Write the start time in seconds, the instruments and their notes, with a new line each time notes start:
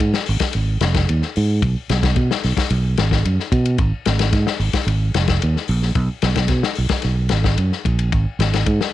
0.00 fingered electric bass G#2, kick, ride bell
0.14 snare
0.26 fingered electric bass G#1, open hi-hat
0.40 kick, snare, ride bell
0.53 fingered electric bass G#1, ride bell
0.81 fingered electric bass F1, snare, ride bell
0.94 kick, snare, ride bell
1.09 fingered electric bass D#2, ride bell
1.22 snare
1.36 fingered electric bass G#2, open hi-hat
1.62 fingered electric bass B1, kick, ride bell
1.89 fingered electric bass B1, snare, ride bell
2.03 kick, snare, ride bell
2.16 fingered electric bass B2, kick, ride bell
2.31 snare
2.43 fingered electric bass B1, snare, open hi-hat
2.57 kick, snare, ride bell
2.70 fingered electric bass B1, ride bell
2.97 fingered electric bass G#1, snare, ride bell
3.11 kick, snare
3.25 fingered electric bass F#2, ride bell
3.40 snare
3.52 fingered electric bass B2, kick, ride bell
3.65 ride bell
3.78 fingered electric bass G#1, kick, ride bell
4.05 fingered electric bass G#1, snare, ride bell
4.19 snare, ride bell
4.33 fingered electric bass G#2, kick, snare, ride bell
4.47 snare
4.60 fingered electric bass G#1, open hi-hat
4.73 kick, snare, ride bell
4.87 fingered electric bass G#1, ride bell
5.14 fingered electric bass F1, snare, ride bell
5.28 kick, snare, ride bell
5.42 fingered electric bass D#2, ride bell
5.56 snare
5.68 fingered electric bass A#1, open hi-hat
5.82 snare
5.95 fingered electric bass B1, kick, ride bell
6.22 fingered electric bass B1, snare, ride bell
6.36 kick, snare, ride bell
6.48 fingered electric bass B2, kick, snare, ride bell
6.63 snare
6.75 fingered electric bass B1, open hi-hat
6.89 muted fingered electric bass stroke, kick, snare, ride bell
7.02 fingered electric bass B1, snare, ride bell
7.29 fingered electric bass G#1, snare, ride bell
7.44 kick, snare
7.58 fingered electric bass F#2, ride bell
7.72 snare
7.85 fingered electric bass A#1, kick, ride bell
7.99 ride bell
8.12 fingered electric bass G#1, kick, ride bell
8.39 fingered electric bass G#1, snare, ride bell
8.53 snare, ride bell
8.66 fingered electric bass G#2, kick, ride bell
8.81 snare